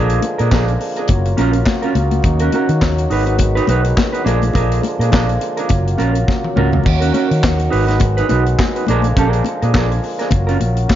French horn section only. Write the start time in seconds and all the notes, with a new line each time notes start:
Already playing: D3 F3 G#3 A#3 F4
1.10 C#3 F#3 F4 F#4
2.24 D#4
3.11 D#3 G#3 B3
4.26 D3 F3 A#3 F4
5.71 C#3 F#3 F#4
6.85 D#3 C#4
7.71 F#3 G#3 B3
8.87 D3 F3 A#3 F4
10.32 C#3 F#3 A#3 F#4